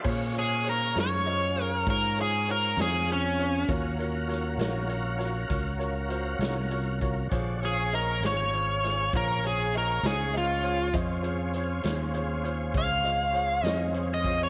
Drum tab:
CC |x-----------|------------|------------|------------|
HH |-xxxxxxxxxxx|xxxxxxxxxxxx|xxxxxxxxxxxx|xxxxxxxxxxxx|
SD |--oo-o---o--|--oo-o---o--|---o-o---o--|---o-----o--|
BD |o-----o-----|o-----o----o|o-----o-----|o-----o----o|